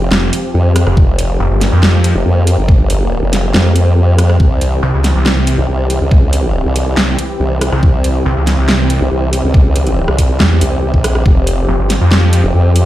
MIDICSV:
0, 0, Header, 1, 5, 480
1, 0, Start_track
1, 0, Tempo, 428571
1, 1088, Time_signature, 4, 2, 24, 8
1, 14396, End_track
2, 0, Start_track
2, 0, Title_t, "Supersaw synth"
2, 0, Program_c, 0, 81
2, 0, Note_on_c, 0, 53, 80
2, 0, Note_on_c, 0, 60, 71
2, 0, Note_on_c, 0, 67, 83
2, 1049, Note_off_c, 0, 60, 0
2, 1088, Note_on_c, 0, 58, 75
2, 4882, Note_off_c, 0, 53, 0
2, 4882, Note_off_c, 0, 67, 0
2, 4889, Note_off_c, 0, 58, 0
2, 4927, Note_on_c, 0, 52, 78
2, 4927, Note_on_c, 0, 60, 75
2, 4927, Note_on_c, 0, 67, 86
2, 12563, Note_off_c, 0, 52, 0
2, 12608, Note_on_c, 0, 53, 80
2, 14396, Note_off_c, 0, 53, 0
2, 14396, Note_off_c, 0, 60, 0
2, 14396, Note_off_c, 0, 67, 0
2, 14396, End_track
3, 0, Start_track
3, 0, Title_t, "Detuned saw bass"
3, 0, Program_c, 1, 39
3, 128, Note_on_c, 1, 29, 99
3, 349, Note_off_c, 1, 29, 0
3, 970, Note_on_c, 1, 29, 97
3, 1069, Note_off_c, 1, 29, 0
3, 1568, Note_on_c, 1, 29, 95
3, 1671, Note_off_c, 1, 29, 0
3, 1690, Note_on_c, 1, 31, 97
3, 1910, Note_off_c, 1, 31, 0
3, 1930, Note_on_c, 1, 41, 99
3, 2390, Note_off_c, 1, 41, 0
3, 5407, Note_on_c, 1, 36, 96
3, 5510, Note_off_c, 1, 36, 0
3, 5529, Note_on_c, 1, 37, 95
3, 5750, Note_off_c, 1, 37, 0
3, 5769, Note_on_c, 1, 36, 100
3, 6230, Note_off_c, 1, 36, 0
3, 7807, Note_on_c, 1, 36, 94
3, 8028, Note_off_c, 1, 36, 0
3, 8650, Note_on_c, 1, 36, 98
3, 8748, Note_off_c, 1, 36, 0
3, 9247, Note_on_c, 1, 36, 101
3, 9350, Note_off_c, 1, 36, 0
3, 9371, Note_on_c, 1, 37, 92
3, 9591, Note_off_c, 1, 37, 0
3, 9611, Note_on_c, 1, 36, 97
3, 10071, Note_off_c, 1, 36, 0
3, 11647, Note_on_c, 1, 40, 97
3, 11869, Note_off_c, 1, 40, 0
3, 13087, Note_on_c, 1, 29, 102
3, 13191, Note_off_c, 1, 29, 0
3, 13211, Note_on_c, 1, 31, 93
3, 13431, Note_off_c, 1, 31, 0
3, 13451, Note_on_c, 1, 41, 97
3, 13911, Note_off_c, 1, 41, 0
3, 14396, End_track
4, 0, Start_track
4, 0, Title_t, "Wobble bass"
4, 0, Program_c, 2, 39
4, 607, Note_on_c, 2, 41, 106
4, 951, Note_off_c, 2, 41, 0
4, 1088, Note_on_c, 2, 29, 102
4, 1549, Note_off_c, 2, 29, 0
4, 2411, Note_on_c, 2, 29, 96
4, 2509, Note_off_c, 2, 29, 0
4, 2528, Note_on_c, 2, 41, 100
4, 2871, Note_off_c, 2, 41, 0
4, 2890, Note_on_c, 2, 31, 92
4, 3590, Note_off_c, 2, 31, 0
4, 3610, Note_on_c, 2, 29, 95
4, 3949, Note_off_c, 2, 29, 0
4, 3966, Note_on_c, 2, 41, 103
4, 4908, Note_off_c, 2, 41, 0
4, 4928, Note_on_c, 2, 36, 102
4, 5389, Note_off_c, 2, 36, 0
4, 6251, Note_on_c, 2, 36, 102
4, 6349, Note_off_c, 2, 36, 0
4, 6368, Note_on_c, 2, 36, 102
4, 6711, Note_off_c, 2, 36, 0
4, 6730, Note_on_c, 2, 37, 101
4, 7431, Note_off_c, 2, 37, 0
4, 7451, Note_on_c, 2, 36, 93
4, 7789, Note_off_c, 2, 36, 0
4, 8287, Note_on_c, 2, 36, 101
4, 8631, Note_off_c, 2, 36, 0
4, 8768, Note_on_c, 2, 36, 99
4, 9229, Note_off_c, 2, 36, 0
4, 10090, Note_on_c, 2, 36, 101
4, 10189, Note_off_c, 2, 36, 0
4, 10208, Note_on_c, 2, 36, 102
4, 10551, Note_off_c, 2, 36, 0
4, 10570, Note_on_c, 2, 37, 90
4, 11271, Note_off_c, 2, 37, 0
4, 11290, Note_on_c, 2, 36, 91
4, 11629, Note_off_c, 2, 36, 0
4, 11887, Note_on_c, 2, 36, 98
4, 12231, Note_off_c, 2, 36, 0
4, 12250, Note_on_c, 2, 34, 101
4, 12589, Note_off_c, 2, 34, 0
4, 12607, Note_on_c, 2, 29, 103
4, 13069, Note_off_c, 2, 29, 0
4, 13931, Note_on_c, 2, 29, 99
4, 14029, Note_off_c, 2, 29, 0
4, 14047, Note_on_c, 2, 41, 98
4, 14391, Note_off_c, 2, 41, 0
4, 14396, End_track
5, 0, Start_track
5, 0, Title_t, "Drums"
5, 128, Note_on_c, 9, 38, 127
5, 240, Note_off_c, 9, 38, 0
5, 368, Note_on_c, 9, 42, 86
5, 480, Note_off_c, 9, 42, 0
5, 848, Note_on_c, 9, 37, 83
5, 848, Note_on_c, 9, 42, 85
5, 960, Note_off_c, 9, 37, 0
5, 960, Note_off_c, 9, 42, 0
5, 971, Note_on_c, 9, 37, 66
5, 1083, Note_off_c, 9, 37, 0
5, 1088, Note_on_c, 9, 36, 127
5, 1200, Note_off_c, 9, 36, 0
5, 1328, Note_on_c, 9, 42, 84
5, 1440, Note_off_c, 9, 42, 0
5, 1807, Note_on_c, 9, 38, 65
5, 1807, Note_on_c, 9, 42, 81
5, 1919, Note_off_c, 9, 38, 0
5, 1919, Note_off_c, 9, 42, 0
5, 2047, Note_on_c, 9, 38, 126
5, 2159, Note_off_c, 9, 38, 0
5, 2287, Note_on_c, 9, 42, 85
5, 2399, Note_off_c, 9, 42, 0
5, 2767, Note_on_c, 9, 42, 86
5, 2879, Note_off_c, 9, 42, 0
5, 3008, Note_on_c, 9, 36, 124
5, 3120, Note_off_c, 9, 36, 0
5, 3247, Note_on_c, 9, 42, 77
5, 3359, Note_off_c, 9, 42, 0
5, 3727, Note_on_c, 9, 38, 63
5, 3727, Note_on_c, 9, 42, 79
5, 3839, Note_off_c, 9, 38, 0
5, 3839, Note_off_c, 9, 42, 0
5, 3967, Note_on_c, 9, 38, 123
5, 4079, Note_off_c, 9, 38, 0
5, 4207, Note_on_c, 9, 42, 78
5, 4319, Note_off_c, 9, 42, 0
5, 4687, Note_on_c, 9, 37, 80
5, 4687, Note_on_c, 9, 42, 83
5, 4799, Note_off_c, 9, 37, 0
5, 4799, Note_off_c, 9, 42, 0
5, 4810, Note_on_c, 9, 37, 64
5, 4922, Note_off_c, 9, 37, 0
5, 4928, Note_on_c, 9, 36, 126
5, 5040, Note_off_c, 9, 36, 0
5, 5167, Note_on_c, 9, 42, 77
5, 5279, Note_off_c, 9, 42, 0
5, 5647, Note_on_c, 9, 38, 60
5, 5647, Note_on_c, 9, 42, 74
5, 5759, Note_off_c, 9, 38, 0
5, 5759, Note_off_c, 9, 42, 0
5, 5888, Note_on_c, 9, 38, 119
5, 6000, Note_off_c, 9, 38, 0
5, 6128, Note_on_c, 9, 42, 79
5, 6240, Note_off_c, 9, 42, 0
5, 6608, Note_on_c, 9, 42, 78
5, 6720, Note_off_c, 9, 42, 0
5, 6848, Note_on_c, 9, 36, 125
5, 6960, Note_off_c, 9, 36, 0
5, 7088, Note_on_c, 9, 42, 78
5, 7200, Note_off_c, 9, 42, 0
5, 7568, Note_on_c, 9, 42, 77
5, 7680, Note_off_c, 9, 42, 0
5, 7808, Note_on_c, 9, 38, 120
5, 7920, Note_off_c, 9, 38, 0
5, 8048, Note_on_c, 9, 42, 80
5, 8160, Note_off_c, 9, 42, 0
5, 8528, Note_on_c, 9, 37, 80
5, 8528, Note_on_c, 9, 42, 76
5, 8640, Note_off_c, 9, 37, 0
5, 8640, Note_off_c, 9, 42, 0
5, 8651, Note_on_c, 9, 37, 65
5, 8763, Note_off_c, 9, 37, 0
5, 8768, Note_on_c, 9, 36, 120
5, 8880, Note_off_c, 9, 36, 0
5, 9007, Note_on_c, 9, 42, 80
5, 9119, Note_off_c, 9, 42, 0
5, 9487, Note_on_c, 9, 38, 59
5, 9487, Note_on_c, 9, 42, 77
5, 9599, Note_off_c, 9, 38, 0
5, 9599, Note_off_c, 9, 42, 0
5, 9728, Note_on_c, 9, 38, 116
5, 9840, Note_off_c, 9, 38, 0
5, 9968, Note_on_c, 9, 42, 80
5, 10080, Note_off_c, 9, 42, 0
5, 10447, Note_on_c, 9, 42, 81
5, 10559, Note_off_c, 9, 42, 0
5, 10688, Note_on_c, 9, 36, 118
5, 10800, Note_off_c, 9, 36, 0
5, 10927, Note_on_c, 9, 42, 81
5, 11039, Note_off_c, 9, 42, 0
5, 11050, Note_on_c, 9, 42, 37
5, 11162, Note_off_c, 9, 42, 0
5, 11290, Note_on_c, 9, 37, 68
5, 11402, Note_off_c, 9, 37, 0
5, 11407, Note_on_c, 9, 36, 61
5, 11407, Note_on_c, 9, 42, 82
5, 11519, Note_off_c, 9, 36, 0
5, 11519, Note_off_c, 9, 42, 0
5, 11647, Note_on_c, 9, 38, 115
5, 11759, Note_off_c, 9, 38, 0
5, 11887, Note_on_c, 9, 42, 82
5, 11999, Note_off_c, 9, 42, 0
5, 12250, Note_on_c, 9, 36, 63
5, 12362, Note_off_c, 9, 36, 0
5, 12367, Note_on_c, 9, 37, 89
5, 12367, Note_on_c, 9, 42, 82
5, 12479, Note_off_c, 9, 37, 0
5, 12479, Note_off_c, 9, 42, 0
5, 12490, Note_on_c, 9, 37, 68
5, 12602, Note_off_c, 9, 37, 0
5, 12608, Note_on_c, 9, 36, 125
5, 12720, Note_off_c, 9, 36, 0
5, 12847, Note_on_c, 9, 42, 86
5, 12959, Note_off_c, 9, 42, 0
5, 13328, Note_on_c, 9, 38, 60
5, 13328, Note_on_c, 9, 42, 81
5, 13440, Note_off_c, 9, 38, 0
5, 13440, Note_off_c, 9, 42, 0
5, 13568, Note_on_c, 9, 38, 121
5, 13680, Note_off_c, 9, 38, 0
5, 13808, Note_on_c, 9, 42, 90
5, 13920, Note_off_c, 9, 42, 0
5, 14287, Note_on_c, 9, 42, 86
5, 14396, Note_off_c, 9, 42, 0
5, 14396, End_track
0, 0, End_of_file